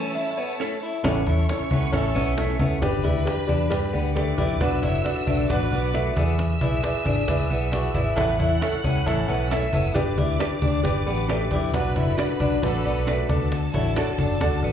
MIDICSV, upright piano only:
0, 0, Header, 1, 2, 480
1, 0, Start_track
1, 0, Tempo, 445765
1, 1122, Time_signature, 4, 2, 24, 8
1, 15854, End_track
2, 0, Start_track
2, 0, Title_t, "Upright piano"
2, 0, Program_c, 0, 0
2, 0, Note_on_c, 0, 52, 47
2, 0, Note_on_c, 0, 57, 43
2, 0, Note_on_c, 0, 61, 53
2, 0, Note_on_c, 0, 73, 89
2, 139, Note_off_c, 0, 52, 0
2, 141, Note_off_c, 0, 57, 0
2, 143, Note_off_c, 0, 61, 0
2, 159, Note_on_c, 0, 76, 82
2, 176, Note_off_c, 0, 73, 0
2, 313, Note_off_c, 0, 76, 0
2, 330, Note_on_c, 0, 76, 65
2, 403, Note_off_c, 0, 76, 0
2, 403, Note_on_c, 0, 73, 80
2, 849, Note_off_c, 0, 73, 0
2, 1119, Note_on_c, 0, 64, 111
2, 1120, Note_on_c, 0, 61, 127
2, 1124, Note_on_c, 0, 69, 113
2, 1124, Note_on_c, 0, 73, 127
2, 1312, Note_off_c, 0, 61, 0
2, 1312, Note_off_c, 0, 64, 0
2, 1315, Note_off_c, 0, 69, 0
2, 1315, Note_off_c, 0, 73, 0
2, 1363, Note_on_c, 0, 69, 83
2, 1365, Note_on_c, 0, 64, 71
2, 1366, Note_on_c, 0, 73, 86
2, 1369, Note_on_c, 0, 61, 84
2, 1554, Note_off_c, 0, 69, 0
2, 1555, Note_off_c, 0, 64, 0
2, 1556, Note_off_c, 0, 73, 0
2, 1557, Note_off_c, 0, 61, 0
2, 1614, Note_on_c, 0, 61, 96
2, 1614, Note_on_c, 0, 69, 80
2, 1615, Note_on_c, 0, 64, 87
2, 1618, Note_on_c, 0, 73, 111
2, 1800, Note_off_c, 0, 61, 0
2, 1800, Note_off_c, 0, 64, 0
2, 1800, Note_off_c, 0, 69, 0
2, 1802, Note_off_c, 0, 73, 0
2, 1846, Note_on_c, 0, 64, 74
2, 1849, Note_on_c, 0, 61, 80
2, 1849, Note_on_c, 0, 69, 71
2, 1852, Note_on_c, 0, 76, 98
2, 2036, Note_off_c, 0, 64, 0
2, 2037, Note_off_c, 0, 61, 0
2, 2037, Note_off_c, 0, 69, 0
2, 2038, Note_off_c, 0, 76, 0
2, 2071, Note_on_c, 0, 61, 117
2, 2074, Note_on_c, 0, 69, 110
2, 2074, Note_on_c, 0, 73, 127
2, 2075, Note_on_c, 0, 64, 101
2, 2268, Note_off_c, 0, 61, 0
2, 2269, Note_off_c, 0, 69, 0
2, 2269, Note_off_c, 0, 73, 0
2, 2270, Note_off_c, 0, 64, 0
2, 2322, Note_on_c, 0, 61, 95
2, 2322, Note_on_c, 0, 73, 105
2, 2324, Note_on_c, 0, 64, 74
2, 2328, Note_on_c, 0, 69, 84
2, 2513, Note_off_c, 0, 61, 0
2, 2513, Note_off_c, 0, 73, 0
2, 2514, Note_off_c, 0, 64, 0
2, 2516, Note_off_c, 0, 69, 0
2, 2560, Note_on_c, 0, 61, 95
2, 2560, Note_on_c, 0, 64, 87
2, 2566, Note_on_c, 0, 69, 87
2, 2566, Note_on_c, 0, 73, 104
2, 2752, Note_off_c, 0, 61, 0
2, 2752, Note_off_c, 0, 64, 0
2, 2755, Note_off_c, 0, 69, 0
2, 2755, Note_off_c, 0, 73, 0
2, 2792, Note_on_c, 0, 64, 87
2, 2796, Note_on_c, 0, 61, 97
2, 2796, Note_on_c, 0, 69, 93
2, 2797, Note_on_c, 0, 76, 115
2, 2988, Note_off_c, 0, 64, 0
2, 2990, Note_off_c, 0, 61, 0
2, 2990, Note_off_c, 0, 69, 0
2, 2991, Note_off_c, 0, 76, 0
2, 3032, Note_on_c, 0, 62, 127
2, 3034, Note_on_c, 0, 67, 116
2, 3036, Note_on_c, 0, 74, 127
2, 3039, Note_on_c, 0, 71, 121
2, 3228, Note_off_c, 0, 62, 0
2, 3229, Note_off_c, 0, 67, 0
2, 3230, Note_off_c, 0, 74, 0
2, 3231, Note_off_c, 0, 71, 0
2, 3278, Note_on_c, 0, 71, 82
2, 3279, Note_on_c, 0, 62, 91
2, 3279, Note_on_c, 0, 67, 77
2, 3283, Note_on_c, 0, 74, 105
2, 3471, Note_off_c, 0, 67, 0
2, 3471, Note_off_c, 0, 71, 0
2, 3472, Note_off_c, 0, 62, 0
2, 3474, Note_off_c, 0, 74, 0
2, 3504, Note_on_c, 0, 67, 92
2, 3506, Note_on_c, 0, 62, 95
2, 3508, Note_on_c, 0, 74, 105
2, 3511, Note_on_c, 0, 71, 89
2, 3704, Note_off_c, 0, 67, 0
2, 3705, Note_off_c, 0, 62, 0
2, 3706, Note_off_c, 0, 74, 0
2, 3708, Note_off_c, 0, 71, 0
2, 3740, Note_on_c, 0, 74, 93
2, 3742, Note_on_c, 0, 67, 79
2, 3743, Note_on_c, 0, 62, 81
2, 3744, Note_on_c, 0, 71, 76
2, 3942, Note_off_c, 0, 74, 0
2, 3943, Note_off_c, 0, 62, 0
2, 3943, Note_off_c, 0, 67, 0
2, 3944, Note_off_c, 0, 71, 0
2, 3982, Note_on_c, 0, 62, 123
2, 3986, Note_on_c, 0, 71, 106
2, 3988, Note_on_c, 0, 74, 126
2, 3990, Note_on_c, 0, 67, 108
2, 4183, Note_off_c, 0, 62, 0
2, 4185, Note_off_c, 0, 71, 0
2, 4186, Note_off_c, 0, 74, 0
2, 4187, Note_off_c, 0, 67, 0
2, 4231, Note_on_c, 0, 62, 95
2, 4233, Note_on_c, 0, 71, 81
2, 4233, Note_on_c, 0, 74, 98
2, 4237, Note_on_c, 0, 67, 84
2, 4427, Note_off_c, 0, 62, 0
2, 4428, Note_off_c, 0, 71, 0
2, 4428, Note_off_c, 0, 74, 0
2, 4430, Note_off_c, 0, 67, 0
2, 4472, Note_on_c, 0, 71, 81
2, 4472, Note_on_c, 0, 74, 104
2, 4473, Note_on_c, 0, 62, 99
2, 4473, Note_on_c, 0, 67, 87
2, 4668, Note_off_c, 0, 62, 0
2, 4668, Note_off_c, 0, 67, 0
2, 4668, Note_off_c, 0, 71, 0
2, 4668, Note_off_c, 0, 74, 0
2, 4712, Note_on_c, 0, 62, 102
2, 4712, Note_on_c, 0, 71, 95
2, 4717, Note_on_c, 0, 67, 91
2, 4717, Note_on_c, 0, 74, 118
2, 4908, Note_off_c, 0, 62, 0
2, 4908, Note_off_c, 0, 71, 0
2, 4910, Note_off_c, 0, 67, 0
2, 4910, Note_off_c, 0, 74, 0
2, 4958, Note_on_c, 0, 62, 126
2, 4962, Note_on_c, 0, 66, 120
2, 4962, Note_on_c, 0, 74, 127
2, 4963, Note_on_c, 0, 71, 123
2, 5151, Note_off_c, 0, 62, 0
2, 5152, Note_off_c, 0, 66, 0
2, 5152, Note_off_c, 0, 74, 0
2, 5153, Note_off_c, 0, 71, 0
2, 5195, Note_on_c, 0, 71, 76
2, 5195, Note_on_c, 0, 73, 97
2, 5196, Note_on_c, 0, 62, 88
2, 5199, Note_on_c, 0, 66, 87
2, 5389, Note_off_c, 0, 62, 0
2, 5389, Note_off_c, 0, 71, 0
2, 5389, Note_off_c, 0, 73, 0
2, 5391, Note_off_c, 0, 66, 0
2, 5430, Note_on_c, 0, 66, 97
2, 5432, Note_on_c, 0, 62, 97
2, 5432, Note_on_c, 0, 71, 88
2, 5435, Note_on_c, 0, 74, 104
2, 5626, Note_off_c, 0, 66, 0
2, 5627, Note_off_c, 0, 62, 0
2, 5627, Note_off_c, 0, 71, 0
2, 5629, Note_off_c, 0, 74, 0
2, 5668, Note_on_c, 0, 62, 80
2, 5671, Note_on_c, 0, 76, 88
2, 5673, Note_on_c, 0, 66, 69
2, 5674, Note_on_c, 0, 71, 77
2, 5865, Note_off_c, 0, 62, 0
2, 5867, Note_off_c, 0, 76, 0
2, 5868, Note_off_c, 0, 66, 0
2, 5868, Note_off_c, 0, 71, 0
2, 5917, Note_on_c, 0, 62, 116
2, 5920, Note_on_c, 0, 66, 117
2, 5921, Note_on_c, 0, 71, 105
2, 5924, Note_on_c, 0, 74, 127
2, 6110, Note_off_c, 0, 62, 0
2, 6111, Note_off_c, 0, 66, 0
2, 6112, Note_off_c, 0, 71, 0
2, 6113, Note_off_c, 0, 74, 0
2, 6157, Note_on_c, 0, 62, 82
2, 6159, Note_on_c, 0, 66, 88
2, 6160, Note_on_c, 0, 71, 81
2, 6161, Note_on_c, 0, 74, 102
2, 6350, Note_off_c, 0, 62, 0
2, 6351, Note_off_c, 0, 66, 0
2, 6351, Note_off_c, 0, 71, 0
2, 6352, Note_off_c, 0, 74, 0
2, 6396, Note_on_c, 0, 66, 90
2, 6397, Note_on_c, 0, 71, 87
2, 6398, Note_on_c, 0, 62, 99
2, 6400, Note_on_c, 0, 76, 106
2, 6589, Note_off_c, 0, 66, 0
2, 6590, Note_off_c, 0, 62, 0
2, 6590, Note_off_c, 0, 71, 0
2, 6591, Note_off_c, 0, 76, 0
2, 6638, Note_on_c, 0, 71, 98
2, 6639, Note_on_c, 0, 74, 113
2, 6642, Note_on_c, 0, 64, 100
2, 6644, Note_on_c, 0, 68, 100
2, 7022, Note_off_c, 0, 71, 0
2, 7023, Note_off_c, 0, 74, 0
2, 7024, Note_off_c, 0, 64, 0
2, 7025, Note_off_c, 0, 68, 0
2, 7117, Note_on_c, 0, 64, 84
2, 7119, Note_on_c, 0, 68, 78
2, 7119, Note_on_c, 0, 71, 80
2, 7119, Note_on_c, 0, 74, 97
2, 7310, Note_off_c, 0, 64, 0
2, 7310, Note_off_c, 0, 68, 0
2, 7310, Note_off_c, 0, 71, 0
2, 7310, Note_off_c, 0, 74, 0
2, 7350, Note_on_c, 0, 64, 95
2, 7353, Note_on_c, 0, 74, 107
2, 7357, Note_on_c, 0, 68, 84
2, 7359, Note_on_c, 0, 71, 90
2, 7546, Note_off_c, 0, 64, 0
2, 7547, Note_off_c, 0, 74, 0
2, 7549, Note_off_c, 0, 68, 0
2, 7550, Note_off_c, 0, 71, 0
2, 7586, Note_on_c, 0, 64, 82
2, 7586, Note_on_c, 0, 71, 79
2, 7587, Note_on_c, 0, 74, 88
2, 7590, Note_on_c, 0, 68, 80
2, 7784, Note_off_c, 0, 64, 0
2, 7784, Note_off_c, 0, 71, 0
2, 7784, Note_off_c, 0, 74, 0
2, 7786, Note_off_c, 0, 68, 0
2, 7836, Note_on_c, 0, 71, 110
2, 7838, Note_on_c, 0, 68, 97
2, 7841, Note_on_c, 0, 64, 110
2, 7841, Note_on_c, 0, 74, 127
2, 8029, Note_off_c, 0, 71, 0
2, 8030, Note_off_c, 0, 68, 0
2, 8031, Note_off_c, 0, 64, 0
2, 8031, Note_off_c, 0, 74, 0
2, 8074, Note_on_c, 0, 71, 79
2, 8075, Note_on_c, 0, 68, 77
2, 8079, Note_on_c, 0, 64, 84
2, 8081, Note_on_c, 0, 74, 96
2, 8268, Note_off_c, 0, 68, 0
2, 8268, Note_off_c, 0, 71, 0
2, 8270, Note_off_c, 0, 64, 0
2, 8271, Note_off_c, 0, 74, 0
2, 8311, Note_on_c, 0, 64, 89
2, 8311, Note_on_c, 0, 74, 101
2, 8315, Note_on_c, 0, 71, 85
2, 8316, Note_on_c, 0, 68, 85
2, 8506, Note_off_c, 0, 64, 0
2, 8506, Note_off_c, 0, 74, 0
2, 8508, Note_off_c, 0, 71, 0
2, 8509, Note_off_c, 0, 68, 0
2, 8552, Note_on_c, 0, 68, 83
2, 8558, Note_on_c, 0, 74, 108
2, 8559, Note_on_c, 0, 64, 99
2, 8561, Note_on_c, 0, 71, 82
2, 8747, Note_off_c, 0, 68, 0
2, 8750, Note_off_c, 0, 64, 0
2, 8750, Note_off_c, 0, 74, 0
2, 8751, Note_off_c, 0, 71, 0
2, 8787, Note_on_c, 0, 64, 127
2, 8791, Note_on_c, 0, 69, 122
2, 8794, Note_on_c, 0, 73, 120
2, 8798, Note_on_c, 0, 76, 127
2, 8984, Note_off_c, 0, 64, 0
2, 8986, Note_off_c, 0, 69, 0
2, 8988, Note_off_c, 0, 73, 0
2, 8989, Note_off_c, 0, 76, 0
2, 9029, Note_on_c, 0, 64, 92
2, 9035, Note_on_c, 0, 73, 88
2, 9035, Note_on_c, 0, 76, 92
2, 9036, Note_on_c, 0, 69, 79
2, 9225, Note_off_c, 0, 64, 0
2, 9228, Note_off_c, 0, 73, 0
2, 9228, Note_off_c, 0, 76, 0
2, 9229, Note_off_c, 0, 69, 0
2, 9277, Note_on_c, 0, 64, 104
2, 9277, Note_on_c, 0, 69, 89
2, 9280, Note_on_c, 0, 73, 89
2, 9281, Note_on_c, 0, 76, 111
2, 9469, Note_off_c, 0, 64, 0
2, 9469, Note_off_c, 0, 69, 0
2, 9470, Note_off_c, 0, 73, 0
2, 9471, Note_off_c, 0, 76, 0
2, 9522, Note_on_c, 0, 73, 83
2, 9524, Note_on_c, 0, 64, 91
2, 9524, Note_on_c, 0, 69, 68
2, 9526, Note_on_c, 0, 76, 82
2, 9712, Note_off_c, 0, 64, 0
2, 9712, Note_off_c, 0, 69, 0
2, 9712, Note_off_c, 0, 73, 0
2, 9713, Note_off_c, 0, 76, 0
2, 9753, Note_on_c, 0, 64, 117
2, 9757, Note_on_c, 0, 73, 102
2, 9758, Note_on_c, 0, 69, 112
2, 9760, Note_on_c, 0, 76, 127
2, 9947, Note_off_c, 0, 64, 0
2, 9949, Note_off_c, 0, 73, 0
2, 9950, Note_off_c, 0, 69, 0
2, 9950, Note_off_c, 0, 76, 0
2, 9994, Note_on_c, 0, 64, 92
2, 9995, Note_on_c, 0, 69, 84
2, 9997, Note_on_c, 0, 73, 84
2, 9999, Note_on_c, 0, 78, 100
2, 10188, Note_off_c, 0, 64, 0
2, 10188, Note_off_c, 0, 69, 0
2, 10189, Note_off_c, 0, 73, 0
2, 10190, Note_off_c, 0, 78, 0
2, 10245, Note_on_c, 0, 69, 81
2, 10246, Note_on_c, 0, 73, 85
2, 10250, Note_on_c, 0, 64, 99
2, 10252, Note_on_c, 0, 76, 105
2, 10433, Note_off_c, 0, 69, 0
2, 10433, Note_off_c, 0, 73, 0
2, 10435, Note_off_c, 0, 64, 0
2, 10436, Note_off_c, 0, 76, 0
2, 10481, Note_on_c, 0, 64, 103
2, 10483, Note_on_c, 0, 69, 90
2, 10484, Note_on_c, 0, 73, 91
2, 10488, Note_on_c, 0, 76, 114
2, 10671, Note_off_c, 0, 64, 0
2, 10672, Note_off_c, 0, 69, 0
2, 10672, Note_off_c, 0, 73, 0
2, 10674, Note_off_c, 0, 76, 0
2, 10706, Note_on_c, 0, 71, 121
2, 10708, Note_on_c, 0, 62, 127
2, 10711, Note_on_c, 0, 74, 127
2, 10713, Note_on_c, 0, 67, 116
2, 10904, Note_off_c, 0, 71, 0
2, 10905, Note_off_c, 0, 62, 0
2, 10906, Note_off_c, 0, 74, 0
2, 10907, Note_off_c, 0, 67, 0
2, 10958, Note_on_c, 0, 62, 95
2, 10959, Note_on_c, 0, 67, 82
2, 10959, Note_on_c, 0, 74, 97
2, 10960, Note_on_c, 0, 71, 85
2, 11149, Note_off_c, 0, 62, 0
2, 11150, Note_off_c, 0, 67, 0
2, 11150, Note_off_c, 0, 74, 0
2, 11151, Note_off_c, 0, 71, 0
2, 11190, Note_on_c, 0, 67, 95
2, 11191, Note_on_c, 0, 74, 109
2, 11193, Note_on_c, 0, 62, 102
2, 11195, Note_on_c, 0, 71, 81
2, 11385, Note_off_c, 0, 67, 0
2, 11386, Note_off_c, 0, 74, 0
2, 11387, Note_off_c, 0, 62, 0
2, 11388, Note_off_c, 0, 71, 0
2, 11431, Note_on_c, 0, 62, 82
2, 11433, Note_on_c, 0, 67, 74
2, 11433, Note_on_c, 0, 71, 70
2, 11434, Note_on_c, 0, 74, 99
2, 11626, Note_off_c, 0, 62, 0
2, 11627, Note_off_c, 0, 67, 0
2, 11627, Note_off_c, 0, 71, 0
2, 11627, Note_off_c, 0, 74, 0
2, 11665, Note_on_c, 0, 67, 105
2, 11667, Note_on_c, 0, 62, 116
2, 11670, Note_on_c, 0, 71, 110
2, 11672, Note_on_c, 0, 74, 127
2, 11863, Note_off_c, 0, 67, 0
2, 11864, Note_off_c, 0, 62, 0
2, 11865, Note_off_c, 0, 71, 0
2, 11866, Note_off_c, 0, 74, 0
2, 11912, Note_on_c, 0, 62, 91
2, 11913, Note_on_c, 0, 67, 91
2, 11913, Note_on_c, 0, 74, 101
2, 11914, Note_on_c, 0, 83, 73
2, 11920, Note_on_c, 0, 71, 80
2, 12107, Note_off_c, 0, 62, 0
2, 12107, Note_off_c, 0, 67, 0
2, 12107, Note_off_c, 0, 74, 0
2, 12110, Note_off_c, 0, 71, 0
2, 12139, Note_off_c, 0, 83, 0
2, 12160, Note_on_c, 0, 67, 89
2, 12161, Note_on_c, 0, 74, 101
2, 12163, Note_on_c, 0, 62, 96
2, 12165, Note_on_c, 0, 71, 94
2, 12350, Note_off_c, 0, 67, 0
2, 12352, Note_off_c, 0, 62, 0
2, 12352, Note_off_c, 0, 74, 0
2, 12353, Note_off_c, 0, 71, 0
2, 12398, Note_on_c, 0, 62, 98
2, 12401, Note_on_c, 0, 67, 96
2, 12401, Note_on_c, 0, 71, 91
2, 12401, Note_on_c, 0, 74, 113
2, 12589, Note_off_c, 0, 62, 0
2, 12591, Note_off_c, 0, 67, 0
2, 12591, Note_off_c, 0, 71, 0
2, 12591, Note_off_c, 0, 74, 0
2, 12639, Note_on_c, 0, 62, 127
2, 12639, Note_on_c, 0, 66, 117
2, 12645, Note_on_c, 0, 71, 112
2, 12647, Note_on_c, 0, 74, 127
2, 12830, Note_off_c, 0, 62, 0
2, 12830, Note_off_c, 0, 66, 0
2, 12833, Note_off_c, 0, 71, 0
2, 12834, Note_off_c, 0, 74, 0
2, 12880, Note_on_c, 0, 62, 89
2, 12885, Note_on_c, 0, 66, 78
2, 12886, Note_on_c, 0, 74, 102
2, 12890, Note_on_c, 0, 71, 85
2, 13070, Note_off_c, 0, 62, 0
2, 13073, Note_off_c, 0, 66, 0
2, 13073, Note_off_c, 0, 74, 0
2, 13076, Note_off_c, 0, 71, 0
2, 13115, Note_on_c, 0, 62, 105
2, 13116, Note_on_c, 0, 71, 94
2, 13122, Note_on_c, 0, 66, 90
2, 13122, Note_on_c, 0, 74, 105
2, 13308, Note_off_c, 0, 62, 0
2, 13308, Note_off_c, 0, 71, 0
2, 13311, Note_off_c, 0, 66, 0
2, 13311, Note_off_c, 0, 74, 0
2, 13352, Note_on_c, 0, 74, 100
2, 13354, Note_on_c, 0, 66, 85
2, 13356, Note_on_c, 0, 62, 82
2, 13358, Note_on_c, 0, 71, 78
2, 13546, Note_off_c, 0, 74, 0
2, 13548, Note_off_c, 0, 62, 0
2, 13548, Note_off_c, 0, 66, 0
2, 13549, Note_off_c, 0, 71, 0
2, 13590, Note_on_c, 0, 66, 112
2, 13592, Note_on_c, 0, 62, 120
2, 13596, Note_on_c, 0, 71, 108
2, 13597, Note_on_c, 0, 74, 127
2, 13786, Note_off_c, 0, 62, 0
2, 13786, Note_off_c, 0, 66, 0
2, 13788, Note_off_c, 0, 71, 0
2, 13789, Note_off_c, 0, 74, 0
2, 13836, Note_on_c, 0, 62, 90
2, 13839, Note_on_c, 0, 74, 98
2, 13842, Note_on_c, 0, 66, 77
2, 13842, Note_on_c, 0, 71, 83
2, 14029, Note_off_c, 0, 62, 0
2, 14030, Note_off_c, 0, 74, 0
2, 14031, Note_off_c, 0, 71, 0
2, 14032, Note_off_c, 0, 66, 0
2, 14087, Note_on_c, 0, 62, 96
2, 14090, Note_on_c, 0, 71, 90
2, 14091, Note_on_c, 0, 66, 82
2, 14092, Note_on_c, 0, 74, 98
2, 14274, Note_off_c, 0, 62, 0
2, 14276, Note_off_c, 0, 66, 0
2, 14276, Note_off_c, 0, 71, 0
2, 14277, Note_off_c, 0, 74, 0
2, 14311, Note_on_c, 0, 66, 92
2, 14312, Note_on_c, 0, 62, 108
2, 14312, Note_on_c, 0, 74, 121
2, 14313, Note_on_c, 0, 69, 90
2, 14699, Note_off_c, 0, 62, 0
2, 14699, Note_off_c, 0, 66, 0
2, 14699, Note_off_c, 0, 69, 0
2, 14699, Note_off_c, 0, 74, 0
2, 14794, Note_on_c, 0, 73, 104
2, 14795, Note_on_c, 0, 62, 97
2, 14798, Note_on_c, 0, 69, 85
2, 14800, Note_on_c, 0, 66, 73
2, 14988, Note_off_c, 0, 62, 0
2, 14988, Note_off_c, 0, 73, 0
2, 14990, Note_off_c, 0, 69, 0
2, 14991, Note_off_c, 0, 66, 0
2, 15035, Note_on_c, 0, 66, 97
2, 15036, Note_on_c, 0, 62, 102
2, 15040, Note_on_c, 0, 69, 97
2, 15041, Note_on_c, 0, 73, 102
2, 15228, Note_off_c, 0, 66, 0
2, 15229, Note_off_c, 0, 62, 0
2, 15231, Note_off_c, 0, 69, 0
2, 15231, Note_off_c, 0, 73, 0
2, 15274, Note_on_c, 0, 66, 82
2, 15275, Note_on_c, 0, 62, 82
2, 15277, Note_on_c, 0, 69, 77
2, 15277, Note_on_c, 0, 74, 91
2, 15468, Note_off_c, 0, 62, 0
2, 15468, Note_off_c, 0, 66, 0
2, 15469, Note_off_c, 0, 69, 0
2, 15469, Note_off_c, 0, 74, 0
2, 15513, Note_on_c, 0, 62, 111
2, 15513, Note_on_c, 0, 69, 107
2, 15516, Note_on_c, 0, 66, 110
2, 15517, Note_on_c, 0, 74, 126
2, 15707, Note_off_c, 0, 69, 0
2, 15708, Note_off_c, 0, 62, 0
2, 15709, Note_off_c, 0, 66, 0
2, 15710, Note_off_c, 0, 74, 0
2, 15746, Note_on_c, 0, 66, 81
2, 15749, Note_on_c, 0, 69, 84
2, 15750, Note_on_c, 0, 62, 86
2, 15750, Note_on_c, 0, 74, 92
2, 15854, Note_off_c, 0, 62, 0
2, 15854, Note_off_c, 0, 66, 0
2, 15854, Note_off_c, 0, 69, 0
2, 15854, Note_off_c, 0, 74, 0
2, 15854, End_track
0, 0, End_of_file